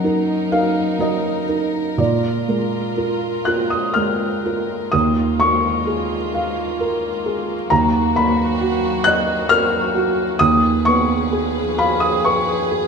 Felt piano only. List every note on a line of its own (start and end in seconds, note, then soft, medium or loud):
0.00 1.95 F#2 medium
0.00 0.99 F#3 soft
0.00 0.05 A#4 medium
0.00 0.49 F#5 loud
0.04 0.48 D#4 medium
0.04 0.48 A#4 medium
0.52 0.96 D#4 medium
0.52 0.96 A#4 medium
0.52 0.96 F5 medium
0.99 1.44 F#3 soft
0.99 1.45 A#4 medium
0.99 1.95 D#5 medium
1.48 1.95 D#4 soft
1.48 1.95 A#4 soft
1.98 4.88 A#2 medium
1.98 3.41 D5 medium
2.48 2.93 G#3 soft
2.48 2.93 A#4 soft
2.97 3.41 F4 soft
2.97 3.42 A#4 soft
3.45 3.91 F4 soft
3.45 3.91 A#4 soft
3.45 3.68 F#6 medium
3.70 3.93 D#6 medium
3.94 4.41 G#3 soft
3.94 4.41 A#4 soft
3.94 4.88 F6 medium
4.45 4.89 F4 soft
4.45 4.89 A#4 soft
4.92 7.66 D#2 medium
4.92 5.36 D#6 medium
5.40 6.15 A#3 medium
5.40 7.66 C#6 medium
5.87 6.61 G#4 medium
6.35 7.07 F5 medium
6.81 7.53 A#4 medium
7.26 7.71 G#4 medium
7.70 10.36 D#2 medium
7.70 8.12 A#5 loud
8.16 8.88 A#3 medium
8.16 9.01 B5 loud
8.61 9.32 F#4 medium
9.04 9.77 D#5 medium
9.04 9.46 F#6 loud
9.49 10.22 A#4 medium
9.49 10.35 F6 loud
9.95 10.40 F#4 medium
10.39 12.87 D#2 medium
10.39 10.82 D#6 loud
10.85 11.59 B3 medium
10.85 11.74 C#6 loud
11.33 12.06 G#4 medium
11.78 12.53 F5 medium
11.78 12.00 B5 loud
12.00 12.22 D#6 medium
12.25 12.87 B4 medium
12.25 12.87 C#6 medium
12.72 12.87 G#4 medium